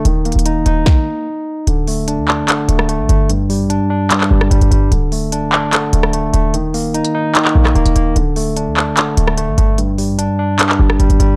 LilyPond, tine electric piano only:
\new Staff \with { instrumentName = "Tine electric piano" } { \time 4/4 \key ees \lydian \tempo 4 = 148 ees8 bes8 ees'8 ees'2~ ees'8 | d8 a8 d'8 d'8 d8 a8 a8 a8 | g,8 g8 d'8 d'8 g,8 g8 g8 g8 | d8 a8 d'8 d'8 d8 a8 a8 a8 |
ees8 bes8 ees'8 ees'8 ees8 bes8 bes8 bes8 | d8 a8 d'8 d'8 d8 a8 a8 a8 | g,8 g8 d'8 d'8 g,8 g8 g8 g8 | }